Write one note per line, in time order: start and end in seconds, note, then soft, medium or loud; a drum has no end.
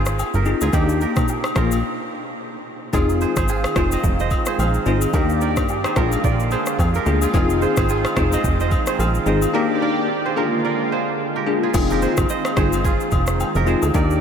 0.00 0.24 G#1 loud
0.00 0.63 F4 medium
0.00 0.42 G#4 medium
0.00 0.34 A#4 medium
0.00 0.99 C5 medium
0.05 cross-stick medium
0.05 shaker loud
0.19 high agogo medium
0.19 low woodblock medium
0.19 shaker medium
0.34 0.55 G1 loud
0.34 0.68 G4 medium
0.34 1.01 A#4 medium
0.34 shaker soft
0.45 0.67 C4 medium
0.45 0.67 D#4 medium
0.45 0.68 F4 medium
0.45 0.68 G#4 medium
0.45 shaker soft
0.61 0.70 D2 medium
0.61 1.57 F4 medium
0.61 0.80 G#4 medium
0.61 high agogo medium
0.61 shaker loud
0.73 1.06 D#2 loud
0.73 1.24 A#3 medium
0.73 1.24 D4 medium
0.73 1.25 D#4 medium
0.73 2.37 D#4 medium
0.73 1.25 G4 loud
0.73 1.02 G4 loud
0.73 kick loud
0.73 high agogo medium
0.73 shaker medium
0.89 shaker medium
1.01 2.43 G4 medium
1.01 1.56 A#4 medium
1.01 shaker medium
1.16 kick loud
1.16 cross-stick medium
1.16 mid tom medium
1.16 high agogo medium
1.16 shaker medium
1.28 low woodblock medium
1.28 shaker medium
1.44 cross-stick loud
1.44 high agogo medium
1.44 shaker soft
1.56 1.83 A#1 loud
1.56 1.77 A#3 medium
1.56 1.78 D4 medium
1.56 1.78 F4 medium
1.56 2.94 F4 medium
1.56 1.78 G#4 medium
1.56 2.84 A#4 medium
1.56 kick loud
1.56 cross-stick loud
1.56 shaker medium
1.71 high agogo medium
1.71 shaker loud
2.93 3.26 F1 loud
2.93 5.93 D#3 medium
2.93 5.11 G#3 medium
2.93 3.45 C4 medium
2.93 5.11 C4 medium
2.93 3.45 D#4 medium
2.93 5.11 F4 medium
2.93 3.45 F4 medium
2.93 3.50 F4 medium
2.93 3.45 G#4 loud
2.93 3.22 G#4 medium
2.93 kick loud
2.93 high agogo medium
2.93 shaker medium
3.09 shaker medium
3.21 3.38 G#4 medium
3.21 3.37 C5 medium
3.21 shaker medium
3.36 3.66 G#1 medium
3.36 3.49 G#4 medium
3.36 3.76 C5 medium
3.36 kick loud
3.36 cross-stick medium
3.36 high agogo medium
3.36 shaker medium
3.48 5.01 F4 medium
3.48 3.77 G#4 medium
3.48 low woodblock medium
3.48 shaker medium
3.64 cross-stick loud
3.64 high agogo medium
3.64 shaker soft
3.76 3.97 F1 loud
3.76 3.98 C4 medium
3.76 3.98 D#4 medium
3.76 3.98 F4 medium
3.76 3.98 G#4 medium
3.76 4.48 G#4 medium
3.76 3.93 C5 medium
3.76 kick loud
3.76 cross-stick loud
3.76 shaker medium
3.92 4.21 C5 medium
3.92 4.20 D#5 medium
3.92 high agogo medium
3.92 shaker medium
4.04 4.37 F1 loud
4.04 kick loud
4.04 shaker medium
4.20 4.47 C5 medium
4.20 4.87 D#5 medium
4.20 shaker medium
4.30 kick medium
4.30 high agogo medium
4.30 shaker medium
4.46 5.21 G#4 medium
4.46 4.60 C5 medium
4.46 cross-stick medium
4.46 shaker loud
4.59 4.79 A#1 loud
4.59 4.87 C5 medium
4.59 5.59 F5 medium
4.59 high agogo medium
4.59 low woodblock medium
4.59 shaker medium
4.74 shaker soft
4.86 5.07 G#1 loud
4.86 5.08 C4 medium
4.86 5.08 D#4 medium
4.86 5.08 F4 medium
4.86 5.08 G#4 medium
4.86 5.85 C5 medium
4.86 5.48 D#5 medium
4.86 shaker soft
5.01 high agogo medium
5.01 shaker loud
5.13 5.58 D#2 loud
5.13 7.31 A#3 medium
5.13 5.65 A#3 loud
5.13 5.65 D4 medium
5.13 5.65 D#4 medium
5.13 5.95 G4 medium
5.13 5.65 G4 loud
5.13 5.92 G4 medium
5.13 5.42 A#4 loud
5.13 5.95 D5 medium
5.13 kick loud
5.13 high agogo medium
5.13 shaker medium
5.29 shaker medium
5.41 5.97 A#4 medium
5.41 6.24 D5 medium
5.41 shaker medium
5.56 5.87 G2 medium
5.56 kick medium
5.56 cross-stick medium
5.56 high agogo medium
5.56 shaker medium
5.69 low woodblock medium
5.69 shaker medium
5.84 6.52 G#4 medium
5.84 6.51 C5 medium
5.84 cross-stick loud
5.84 high agogo medium
5.84 shaker soft
5.96 6.17 A#1 loud
5.96 7.33 D3 medium
5.96 9.50 G#3 medium
5.96 6.18 A#3 medium
5.96 6.18 D4 medium
5.96 9.50 F4 medium
5.96 6.18 F4 medium
5.96 7.23 F4 medium
5.96 6.18 G#4 medium
5.96 6.25 A#4 medium
5.96 kick loud
5.96 cross-stick loud
5.96 shaker medium
6.12 high agogo medium
6.12 shaker medium
6.24 6.57 A#1 loud
6.24 6.95 A#4 medium
6.24 7.35 D5 medium
6.24 kick loud
6.24 shaker medium
6.40 shaker soft
6.51 7.02 G#4 medium
6.51 7.62 C5 medium
6.51 high agogo medium
6.51 shaker medium
6.66 cross-stick medium
6.66 shaker medium
6.79 7.00 F2 loud
6.79 kick loud
6.79 high agogo medium
6.79 low woodblock medium
6.79 shaker medium
6.94 7.29 G4 medium
6.94 8.23 A#4 medium
6.94 shaker soft
7.06 7.27 D2 medium
7.06 7.28 A#3 medium
7.06 7.28 D4 medium
7.06 7.28 F4 medium
7.06 7.28 G#4 medium
7.06 shaker soft
7.22 7.35 F4 medium
7.22 7.34 G#4 medium
7.22 high agogo medium
7.22 shaker loud
7.33 7.67 F1 loud
7.33 10.34 D#3 medium
7.33 7.85 C4 loud
7.33 9.52 C4 medium
7.33 7.85 D#4 medium
7.33 7.85 F4 medium
7.33 7.90 F4 medium
7.33 7.85 G#4 loud
7.33 7.63 G#4 medium
7.33 kick loud
7.33 high agogo medium
7.33 shaker medium
7.50 shaker medium
7.62 7.78 G#4 medium
7.62 7.78 C5 medium
7.62 shaker medium
7.77 8.07 G#1 medium
7.77 7.89 G#4 medium
7.77 8.17 C5 medium
7.77 kick medium
7.77 cross-stick loud
7.77 high agogo medium
7.77 shaker medium
7.89 9.42 F4 medium
7.89 8.17 G#4 medium
7.89 low woodblock medium
7.89 shaker medium
8.05 cross-stick loud
8.05 high agogo medium
8.05 shaker soft
8.16 8.37 F1 loud
8.16 8.38 C4 medium
8.16 8.38 D#4 medium
8.16 8.38 F4 medium
8.16 8.38 G#4 medium
8.16 8.88 G#4 medium
8.16 8.33 C5 medium
8.16 kick loud
8.16 cross-stick loud
8.16 shaker medium
8.32 8.61 C5 medium
8.32 8.60 D#5 medium
8.32 high agogo medium
8.32 shaker loud
8.44 8.77 F1 loud
8.44 kick loud
8.44 shaker medium
8.60 8.88 C5 medium
8.60 9.27 D#5 medium
8.60 shaker medium
8.71 kick medium
8.71 high agogo medium
8.71 shaker medium
8.86 9.61 G#4 medium
8.86 9.00 C5 medium
8.86 cross-stick medium
8.86 shaker medium
8.99 9.20 A#1 loud
8.99 9.27 C5 medium
8.99 9.99 F5 medium
8.99 high agogo medium
8.99 low woodblock medium
8.99 shaker medium
9.15 shaker soft
9.26 9.47 G#1 loud
9.26 9.48 C4 medium
9.26 9.48 D#4 medium
9.26 9.48 F4 medium
9.26 9.48 G#4 medium
9.26 10.25 C5 medium
9.26 9.88 D#5 medium
9.26 shaker soft
9.42 high agogo medium
9.42 shaker loud
9.53 10.05 A#3 medium
9.53 11.72 A#3 medium
9.53 10.05 D4 medium
9.53 10.05 D#4 medium
9.53 10.36 G4 medium
9.53 10.05 G4 loud
9.53 10.32 G4 medium
9.53 9.82 A#4 loud
9.53 10.36 D5 medium
9.82 10.37 A#4 medium
9.82 10.64 D5 medium
10.26 10.93 G#4 medium
10.26 10.92 C5 medium
10.36 11.73 D3 medium
10.36 11.73 G#3 medium
10.36 10.58 A#3 medium
10.36 10.58 D4 medium
10.36 11.73 F4 medium
10.36 10.58 F4 medium
10.36 11.64 F4 medium
10.36 10.58 G#4 medium
10.36 10.65 A#4 medium
10.65 11.35 A#4 medium
10.65 11.75 D5 medium
10.92 11.43 G#4 medium
10.92 12.02 C5 medium
11.36 11.69 G4 medium
11.36 11.90 A#4 medium
11.46 11.68 A#3 medium
11.46 11.68 D4 medium
11.46 11.68 F4 medium
11.46 11.69 G#4 medium
11.63 12.85 F4 medium
11.63 11.98 G#4 medium
11.74 12.07 F1 loud
11.74 14.21 D#3 medium
11.74 13.92 G#3 medium
11.74 12.25 C4 medium
11.74 13.92 C4 medium
11.74 12.25 D#4 medium
11.74 12.26 F4 medium
11.74 13.92 F4 medium
11.74 12.26 G#4 loud
11.74 kick loud
11.74 crash loud
11.74 high agogo medium
11.74 shaker medium
11.90 12.09 G4 medium
11.90 13.18 A#4 medium
11.90 shaker medium
12.02 12.58 G#4 medium
12.02 12.30 C5 medium
12.02 shaker medium
12.17 12.26 G1 medium
12.17 kick medium
12.17 cross-stick medium
12.17 high agogo medium
12.17 shaker medium
12.29 12.57 C5 medium
12.29 13.37 D#5 medium
12.29 shaker medium
12.45 cross-stick loud
12.45 high agogo medium
12.45 shaker soft
12.56 12.98 G1 medium
12.56 12.78 C4 medium
12.56 12.78 D#4 medium
12.56 12.78 F4 medium
12.56 12.79 G#4 medium
12.56 12.85 G#4 medium
12.56 13.67 C5 medium
12.56 kick loud
12.56 cross-stick loud
12.56 shaker medium
12.72 high agogo medium
12.72 shaker loud
12.85 14.21 F4 medium
12.85 13.63 G#4 medium
12.85 kick loud
12.85 shaker medium
13.00 shaker medium
13.11 13.45 F1 loud
13.11 kick medium
13.11 high agogo medium
13.11 shaker medium
13.27 cross-stick medium
13.27 shaker loud
13.40 high agogo medium
13.40 low woodblock medium
13.40 shaker medium
13.55 13.76 F1 medium
13.55 13.74 G4 medium
13.55 13.96 A#4 medium
13.55 shaker soft
13.66 13.88 C4 medium
13.66 13.88 D#4 medium
13.66 13.89 F4 medium
13.66 13.89 G#4 medium
13.66 14.21 G#4 medium
13.66 14.21 C5 medium
13.66 shaker soft
13.82 13.92 D2 medium
13.82 high agogo medium
13.82 shaker loud
13.94 14.21 D#2 loud
13.94 14.21 A#3 medium
13.94 14.21 D4 medium
13.94 14.21 D#4 medium
13.94 14.21 G4 medium
13.94 14.21 G4 loud
13.94 14.21 A#4 medium
13.94 14.21 D5 medium
13.94 14.21 D5 loud
13.94 kick loud
13.94 high agogo medium
13.94 shaker medium
14.11 shaker medium